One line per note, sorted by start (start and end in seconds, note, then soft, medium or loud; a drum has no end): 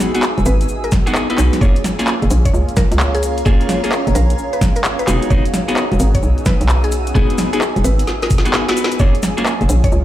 0.00 0.11 B3 loud
0.00 1.57 B3 medium
0.00 0.11 D#4 medium
0.00 1.57 D#4 medium
0.00 0.11 F#4 medium
0.00 1.57 F#4 medium
0.00 0.11 G#4 loud
0.00 5.03 G#4 medium
0.00 2.73 G#5 medium
0.00 1.61 E6 medium
0.00 snare medium
0.00 open hi-hat loud
0.00 cabasa loud
0.14 0.22 B3 medium
0.14 0.22 D#4 medium
0.14 0.22 F#4 medium
0.14 0.27 F#4 medium
0.14 0.22 G#4 loud
0.14 closed hi-hat medium
0.14 cabasa soft
0.23 clap loud
0.23 cabasa medium
0.38 0.44 E1 medium
0.38 closed hi-hat soft
0.38 cabasa soft
0.46 0.66 G#1 loud
0.46 0.63 B4 medium
0.46 open hi-hat medium
0.46 cabasa medium
0.61 closed hi-hat medium
0.61 cabasa soft
0.68 cabasa medium
0.84 0.91 A#4 medium
0.84 closed hi-hat soft
0.84 cabasa soft
0.91 kick loud
0.91 snare medium
0.91 open hi-hat loud
0.91 cabasa medium
1.06 1.27 B3 medium
1.06 1.27 D#4 medium
1.06 1.14 F#4 medium
1.06 1.26 F#4 medium
1.06 1.26 G#4 loud
1.06 closed hi-hat medium
1.06 cabasa soft
1.15 clap loud
1.15 cabasa medium
1.30 1.59 B3 medium
1.30 1.59 D#4 medium
1.30 1.43 E4 medium
1.30 1.59 F#4 medium
1.30 1.59 B4 medium
1.30 closed hi-hat medium
1.30 cabasa soft
1.38 1.50 B1 medium
1.38 clap medium
1.38 open hi-hat medium
1.38 cabasa loud
1.53 snare soft
1.53 closed hi-hat medium
1.53 cabasa soft
1.61 1.74 F#1 loud
1.61 1.75 A#3 medium
1.61 5.04 A#3 medium
1.61 5.04 C#4 medium
1.61 1.75 C#4 medium
1.61 5.04 F4 medium
1.61 1.75 F4 medium
1.61 1.75 G#4 medium
1.61 1.82 C#5 loud
1.61 kick loud
1.61 cabasa medium
1.76 closed hi-hat medium
1.76 cabasa soft
1.84 6.59 C#5 medium
1.84 snare medium
1.84 open hi-hat loud
1.84 cabasa medium
1.99 2.14 A#3 medium
1.99 2.14 C#4 medium
1.99 2.14 F4 medium
1.99 2.14 G#4 loud
1.99 5.08 F5 medium
1.99 6.66 A#5 medium
1.99 closed hi-hat medium
1.99 cabasa soft
2.07 clap loud
2.07 cabasa medium
2.22 2.29 F#1 medium
2.22 closed hi-hat soft
2.22 cabasa soft
2.30 2.51 A#1 loud
2.30 open hi-hat medium
2.30 cabasa loud
2.45 2.58 C#5 medium
2.45 kick medium
2.45 closed hi-hat medium
2.45 cabasa soft
2.54 2.66 C#2 loud
2.54 cabasa medium
2.69 closed hi-hat soft
2.69 cabasa soft
2.76 2.94 A#4 medium
2.76 kick loud
2.76 snare medium
2.76 open hi-hat loud
2.76 cabasa medium
2.92 3.44 C#2 loud
2.92 closed hi-hat medium
2.92 cabasa soft
3.00 clap loud
3.00 cabasa medium
3.15 3.27 G#4 loud
3.15 closed hi-hat medium
3.15 cabasa soft
3.23 open hi-hat medium
3.23 cabasa medium
3.38 closed hi-hat medium
3.38 cabasa soft
3.46 3.58 F#1 loud
3.46 3.80 A#3 medium
3.46 3.80 C#4 medium
3.46 3.80 F4 medium
3.46 3.63 G#4 medium
3.46 3.80 G#4 loud
3.46 kick loud
3.46 cabasa medium
3.61 closed hi-hat medium
3.61 cabasa soft
3.69 snare medium
3.69 open hi-hat loud
3.69 cabasa medium
3.84 3.91 A#3 medium
3.84 3.91 C#4 medium
3.84 3.91 F4 medium
3.84 3.91 G#4 loud
3.84 3.96 G#4 loud
3.84 closed hi-hat medium
3.84 cabasa soft
3.92 clap loud
3.92 cabasa medium
4.07 4.14 F#1 medium
4.07 closed hi-hat soft
4.07 cabasa soft
4.15 4.35 A#1 loud
4.15 4.32 A#4 medium
4.15 open hi-hat medium
4.15 cabasa loud
4.30 closed hi-hat medium
4.30 cabasa soft
4.38 cabasa soft
4.53 4.60 B4 medium
4.53 closed hi-hat soft
4.53 cabasa soft
4.61 kick loud
4.61 snare medium
4.61 open hi-hat loud
4.61 cabasa medium
4.76 4.83 A#4 medium
4.76 closed hi-hat medium
4.76 cabasa soft
4.84 clap loud
4.84 cabasa soft
4.99 5.12 B4 medium
4.99 closed hi-hat medium
4.99 cabasa soft
5.07 5.20 E1 medium
5.07 8.96 B3 medium
5.07 5.29 B3 medium
5.07 8.96 D#4 medium
5.07 5.29 D#4 medium
5.07 8.96 F#4 medium
5.07 5.29 F#4 medium
5.07 5.29 G#4 medium
5.07 10.05 G#4 medium
5.07 clap medium
5.07 open hi-hat medium
5.07 cabasa medium
5.22 9.00 E6 medium
5.22 closed hi-hat medium
5.22 cabasa soft
5.30 5.43 E1 loud
5.30 5.44 B3 medium
5.30 5.44 D#4 medium
5.30 5.44 F#4 medium
5.30 5.44 G#4 medium
5.30 5.51 C#5 loud
5.30 kick loud
5.30 cabasa soft
5.45 closed hi-hat medium
5.45 cabasa soft
5.51 9.74 G#5 medium
5.51 snare medium
5.51 open hi-hat loud
5.51 cabasa medium
5.68 5.83 B3 medium
5.68 5.83 D#4 medium
5.68 5.83 F#4 medium
5.68 5.83 G#4 loud
5.68 closed hi-hat medium
5.68 cabasa soft
5.77 clap loud
5.77 cabasa soft
5.92 5.98 E1 medium
5.92 closed hi-hat soft
5.92 cabasa soft
5.99 6.20 G#1 loud
5.99 open hi-hat loud
5.99 cabasa medium
6.15 6.27 C#5 medium
6.15 kick medium
6.15 closed hi-hat medium
6.15 cabasa soft
6.23 6.35 B1 medium
6.23 cabasa soft
6.38 closed hi-hat soft
6.38 cabasa soft
6.46 6.63 B4 medium
6.46 kick loud
6.46 snare medium
6.46 open hi-hat loud
6.46 cabasa medium
6.61 7.13 B1 loud
6.61 closed hi-hat medium
6.61 cabasa soft
6.69 clap loud
6.69 cabasa medium
6.84 6.96 G#4 medium
6.84 closed hi-hat medium
6.84 cabasa soft
6.92 open hi-hat loud
6.92 cabasa medium
7.07 closed hi-hat medium
7.07 cabasa soft
7.15 7.27 E1 loud
7.15 7.50 B3 loud
7.15 7.50 D#4 medium
7.15 7.50 F#4 medium
7.15 7.32 G#4 medium
7.15 7.50 G#4 loud
7.15 kick loud
7.15 cabasa medium
7.30 closed hi-hat medium
7.30 cabasa soft
7.38 snare medium
7.38 open hi-hat loud
7.38 cabasa medium
7.53 7.60 B3 medium
7.53 7.60 D#4 medium
7.53 7.60 F#4 medium
7.53 7.60 G#4 loud
7.53 7.66 G#4 medium
7.53 closed hi-hat medium
7.53 cabasa soft
7.61 clap loud
7.61 cabasa soft
7.76 7.83 E1 medium
7.76 closed hi-hat soft
7.76 cabasa soft
7.84 8.05 G#1 loud
7.84 8.02 B4 medium
7.84 open hi-hat loud
7.84 cabasa medium
7.99 closed hi-hat medium
7.99 cabasa soft
8.07 snare medium
8.07 cabasa medium
8.22 8.29 A#4 medium
8.22 snare medium
8.22 closed hi-hat soft
8.22 cabasa soft
8.30 kick loud
8.30 open hi-hat loud
8.30 cabasa medium
8.38 snare medium
8.45 8.65 B3 medium
8.45 8.65 D#4 medium
8.45 8.53 F#4 medium
8.45 8.65 F#4 medium
8.45 8.65 G#4 loud
8.45 closed hi-hat medium
8.45 cabasa soft
8.54 snare medium
8.54 clap loud
8.54 cabasa soft
8.68 8.98 B3 medium
8.68 8.98 D#4 medium
8.68 8.81 F#4 loud
8.68 8.98 F#4 medium
8.68 8.98 B4 medium
8.68 snare loud
8.68 closed hi-hat medium
8.68 cabasa soft
8.77 open hi-hat medium
8.77 cabasa medium
8.84 snare loud
8.91 closed hi-hat medium
8.91 cabasa soft
8.99 9.12 F#1 loud
8.99 10.05 F#3 medium
8.99 9.13 A#3 medium
8.99 10.05 A#3 medium
8.99 9.13 C#4 medium
8.99 10.05 C#4 medium
8.99 10.05 F4 medium
8.99 9.13 F4 medium
8.99 9.13 G#4 medium
8.99 9.21 C#5 loud
8.99 kick loud
8.99 cabasa medium
9.15 10.05 C#5 medium
9.15 closed hi-hat medium
9.15 cabasa soft
9.19 10.05 F5 medium
9.19 snare medium
9.19 open hi-hat loud
9.19 cabasa loud
9.37 9.52 A#3 medium
9.37 9.52 C#4 medium
9.37 9.52 F4 medium
9.37 9.52 G#4 loud
9.37 closed hi-hat medium
9.37 cabasa soft
9.46 clap loud
9.46 cabasa medium
9.61 9.68 F#1 medium
9.61 closed hi-hat soft
9.61 cabasa soft
9.69 9.89 A#1 loud
9.69 open hi-hat loud
9.69 cabasa loud
9.84 9.97 C#5 medium
9.84 kick medium
9.84 closed hi-hat medium
9.84 cabasa soft
9.92 10.04 C#2 loud
9.92 cabasa medium